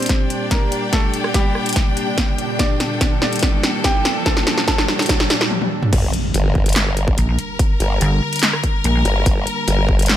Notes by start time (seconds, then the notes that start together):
Already playing: A#2 G3 C4 D4 G4 C5 D5, riser
0.02 G5, closed hi-hat
0.06 kick, snare, closed hi-hat
0.09 closed hi-hat
0.30 closed hi-hat
0.51 A#3 A#4, kick, snare, closed hi-hat
0.72 closed hi-hat
0.93 A3 A4, kick, snare, closed hi-hat
1.14 closed hi-hat
1.24 cross-stick
1.34 G3 G4, kick, snare, closed hi-hat
1.55 cross-stick
1.66 closed hi-hat
1.69 closed hi-hat
1.73 snare, closed hi-hat
1.76 kick, closed hi-hat
1.97 closed hi-hat
2.18 kick, snare, closed hi-hat
2.38 closed hi-hat
2.59 D4 A4 D5, kick, snare, closed hi-hat
2.70 A4
2.80 snare, closed hi-hat
3.01 kick, snare, closed hi-hat
3.22 D4 D5, snare
3.33 closed hi-hat
3.36 closed hi-hat
3.39 snare, closed hi-hat
3.43 kick, closed hi-hat
3.63 snare, closed hi-hat
3.84 G4 G5, kick, snare, closed hi-hat
4.05 snare, closed hi-hat
4.26 A4 A5, kick, snare, closed hi-hat
4.37 snare
4.47 snare, closed hi-hat
4.58 snare
4.68 A4 A5, kick, snare, closed hi-hat
4.78 snare
4.88 snare
4.99 snare, closed hi-hat
5.02 closed hi-hat
5.06 snare, closed hi-hat
5.09 kick, closed hi-hat
5.20 snare
5.30 snare, closed hi-hat
5.41 snare
5.51 high tom
5.62 high tom
5.83 mid tom
5.93 G1 D3 G3 A#3 G4, kick, closed hi-hat, crash, impact
6.14 closed hi-hat
6.34 G1, closed hi-hat
6.41 A#4
6.55 kick
6.66 closed hi-hat
6.69 closed hi-hat
6.73 snare, clap, closed hi-hat
6.76 closed hi-hat
6.97 closed hi-hat
7.08 kick
7.18 A#1, closed hi-hat
7.39 closed hi-hat
7.59 kick, closed hi-hat
7.80 G1, closed hi-hat
8.01 G1, closed hi-hat
8.33 closed hi-hat
8.36 closed hi-hat
8.39 snare, clap, closed hi-hat
8.43 closed hi-hat
8.53 cross-stick
8.64 kick, closed hi-hat
8.84 A#1, closed hi-hat
9.05 G1, closed hi-hat
9.26 G1, kick, closed hi-hat
9.47 closed hi-hat
9.68 G1, closed hi-hat
9.89 kick
9.99 closed hi-hat
10.02 closed hi-hat
10.06 snare, clap, closed hi-hat
10.09 closed hi-hat